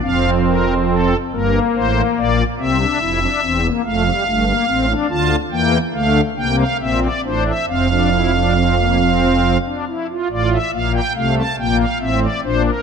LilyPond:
<<
  \new Staff \with { instrumentName = "Pipe organ" } { \time 6/8 \key f \major \tempo 4. = 47 << { f''8 bes'8 a'8 bes'8 c''8 d''8 | e''4. f''4. | a''8 g''8 f''8 g''16 f''16 e''16 d''16 c''16 e''16 | f''2~ f''8 r8 |
d''16 e''16 f''16 g''16 f''16 a''16 g''16 f''16 e''16 d''16 c''16 bes'16 | } \\ { c'4. bes4. | c'16 d'16 e'16 d'16 c'16 bes16 a16 g16 a16 bes16 c'16 d'16 | f'8 bes8 a8 bes8 c'8 d'8 | c'16 d'16 e'16 d'16 c'16 bes16 c'8. d'16 e'16 f'16 |
f'8 bes8 a8 bes8 c'8 d'8 | } >> }
  \new Staff \with { instrumentName = "Pipe organ" } { \clef bass \time 6/8 \key f \major <f,, f,>4. <g,, g,>8 <a,, a,>8 <bes,, bes,>8 | <c, c>8 <f,, f,>8 <e,, e,>8 <f,, f,>8 <g,, g,>8 <a,, a,>8 | <d, d>8 <e, e>8 <d, d>8 <c, c>8 <bes,, bes,>8 <a,, a,>8 | <f,, f,>2~ <f,, f,>8 r8 |
<a,, a,>8 <bes,, bes,>8 <c, c>8 <bes,, bes,>8 <a,, a,>8 <bes,, bes,>8 | }
>>